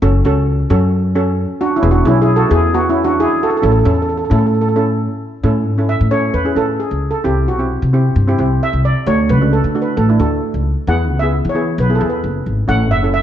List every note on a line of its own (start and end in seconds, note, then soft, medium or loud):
0.02 0.21 F#1 medium
0.02 0.16 C#4 medium
0.02 0.16 F#4 medium
0.02 0.16 A4 medium
0.25 0.62 C#2 medium
0.25 0.52 C#4 medium
0.25 0.52 F#4 medium
0.25 0.53 A4 loud
0.70 1.44 F#2 loud
0.70 0.97 C#4 medium
0.70 0.97 F#4 medium
0.70 0.98 A4 loud
1.15 1.56 C#4 medium
1.15 1.56 F#4 medium
1.15 1.56 A4 medium
1.61 1.75 D4 medium
1.61 1.74 F#4 medium
1.76 1.90 C#4 medium
1.76 1.90 E4 medium
1.82 2.01 E1 medium
1.82 1.96 B3 medium
1.82 1.97 E4 medium
1.82 1.97 G#4 medium
1.91 1.98 D4 medium
1.91 1.98 F#4 medium
2.05 2.42 B1 medium
2.05 2.32 B3 medium
2.05 2.20 C#4 medium
2.05 2.32 E4 medium
2.05 2.20 E4 loud
2.05 2.32 G#4 medium
2.22 2.35 E4 medium
2.22 2.35 G#4 medium
2.36 2.50 F#4 medium
2.36 2.51 A4 loud
2.50 3.25 E2 loud
2.50 3.04 B3 medium
2.50 3.05 E4 medium
2.50 2.72 E4 medium
2.50 3.05 G#4 medium
2.50 2.74 G#4 medium
2.74 2.88 B3 medium
2.74 2.89 F#4 loud
2.89 2.96 C#4 medium
2.89 2.96 E4 medium
3.04 3.18 D4 medium
3.04 3.19 F#4 medium
3.20 3.40 E4 medium
3.20 3.42 G#4 loud
3.43 3.49 F#4 medium
3.43 3.49 A4 medium
3.50 3.56 A4 medium
3.57 3.63 A4 medium
3.62 3.82 A1 loud
3.62 3.76 C#4 medium
3.62 3.77 E4 medium
3.62 3.77 A4 medium
3.62 3.71 A4 medium
3.72 3.78 A4 medium
3.79 3.85 A4 medium
3.85 4.23 E2 medium
3.85 4.13 C#4 medium
3.85 4.13 E4 medium
3.85 4.13 A4 medium
3.85 3.93 A4 medium
3.94 4.01 A4 medium
4.02 4.08 A4 medium
4.09 4.16 A4 medium
4.17 4.24 A4 medium
4.25 4.31 A4 medium
4.30 5.05 A2 loud
4.30 4.58 C#4 medium
4.30 4.58 E4 medium
4.30 4.58 A4 medium
4.30 4.38 A4 medium
4.39 4.45 A4 medium
4.47 4.53 A4 medium
4.54 4.60 A4 soft
4.61 4.67 A4 medium
4.69 4.75 A4 medium
4.76 5.17 C#4 medium
4.76 5.17 E4 medium
4.76 4.83 A4 medium
4.76 5.17 A4 medium
5.43 5.66 A2 medium
5.43 5.64 C#4 medium
5.43 5.64 E4 medium
5.43 5.65 A4 medium
5.66 5.94 G#2 medium
5.78 5.98 C#4 medium
5.78 5.99 E4 medium
5.78 5.99 A4 medium
5.89 6.12 E5 medium
6.01 6.28 A2 medium
6.11 6.32 C#4 medium
6.11 6.32 E4 medium
6.11 6.32 A4 medium
6.11 6.35 C#5 medium
6.34 6.53 E2 medium
6.34 6.58 B4 medium
6.45 6.52 C#4 medium
6.45 6.52 E4 medium
6.45 6.52 G#4 medium
6.55 6.75 A2 medium
6.55 6.97 C#4 medium
6.55 6.98 E4 medium
6.55 6.98 A4 medium
6.55 6.78 A4 medium
6.80 7.11 G#4 medium
6.91 7.10 C#2 medium
7.11 7.26 A4 medium
7.24 7.47 C2 medium
7.24 7.45 C4 medium
7.24 7.45 E4 medium
7.24 7.45 G4 medium
7.24 7.49 G4 medium
7.47 7.76 B1 medium
7.47 7.90 F#4 medium
7.59 7.79 C4 medium
7.59 7.80 E4 medium
7.59 7.80 G4 medium
7.82 8.10 C3 medium
7.93 8.14 C4 medium
7.93 8.14 E4 medium
7.93 8.14 G4 medium
8.16 8.34 G2 medium
8.28 8.34 C4 medium
8.28 8.34 E4 medium
8.28 8.35 G4 medium
8.38 8.57 C2 medium
8.38 8.80 C4 medium
8.38 8.80 E4 medium
8.38 8.80 G4 medium
8.63 8.85 E5 loud
8.73 8.92 C2 medium
8.85 9.08 D5 medium
9.06 9.31 D2 loud
9.06 9.27 A3 medium
9.06 9.27 D4 medium
9.06 9.27 F#4 medium
9.06 9.30 C#5 medium
9.29 9.58 C#2 loud
9.29 9.51 B4 medium
9.41 9.61 A3 medium
9.41 9.62 D4 medium
9.41 9.62 F#4 medium
9.53 9.80 A4 medium
9.64 9.91 D3 medium
9.75 9.95 A3 medium
9.75 9.95 D4 medium
9.75 9.95 F#4 medium
9.82 9.98 B4 medium
9.97 10.16 A1 loud
9.97 10.19 A4 medium
10.09 10.15 A3 medium
10.09 10.16 D4 medium
10.09 10.16 E4 medium
10.19 10.38 D2 medium
10.19 10.61 A3 medium
10.19 10.61 D4 medium
10.19 10.61 F#4 medium
10.19 10.62 A4 medium
10.54 10.73 C#2 medium
10.87 11.10 E2 medium
10.87 11.08 B3 medium
10.87 11.09 E4 medium
10.87 11.09 G#4 medium
10.87 11.19 F#5 medium
11.10 11.38 C#2 medium
11.19 11.42 B3 medium
11.19 11.43 E4 medium
11.19 11.43 G#4 medium
11.19 11.50 E5 medium
11.45 11.72 E3 medium
11.49 11.80 C#5 medium
11.55 11.76 B3 medium
11.55 11.76 E4 medium
11.55 11.76 G#4 medium
11.78 11.97 B1 medium
11.78 11.95 B4 medium
11.90 11.96 B3 medium
11.90 11.96 E4 medium
11.90 11.97 G#4 medium
11.95 12.08 A4 medium
12.00 12.19 E2 medium
12.00 12.41 B3 medium
12.00 12.41 E4 medium
12.00 12.42 G#4 medium
12.10 12.30 B4 medium
12.24 12.44 F#1 medium
12.46 12.67 G#1 medium
12.68 12.92 A1 medium
12.68 12.89 C#4 medium
12.68 12.89 E4 medium
12.68 12.89 A4 medium
12.68 12.92 F#5 loud
12.91 13.20 F#1 medium
12.91 13.13 E5 loud
13.03 13.22 C#4 medium
13.03 13.22 E4 medium
13.03 13.22 A4 medium
13.14 13.22 E5 loud